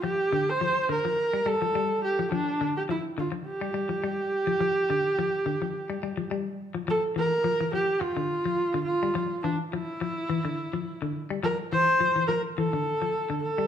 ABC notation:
X:1
M:4/4
L:1/16
Q:"Swing 16ths" 1/4=105
K:Dm
V:1 name="Viola"
G3 c3 B4 A4 G2 | D3 G E2 F2 G8- | G12 z4 | A2 B4 G2 F6 F2- |
F2 D2 E8- E2 z2 | B2 c4 B2 A6 A2 |]
V:2 name="Clean electric guitar" clef=bass
F,2 D,2 F,2 D, F,2 G, G, F, G,2 z F, | F,2 D,2 F,2 D, F,2 G, G, F, G,2 z F, | F,2 D,2 F,2 D, F,2 G, G, F, G,2 z F, | F,2 E,2 F, E, F,2 z D,2 F,2 D,2 G, |
F,2 E,2 F, z F,2 E, D,2 F,2 D,2 G, | F,2 E,2 F, E, F,2 E, D,2 F,2 D,2 G, |]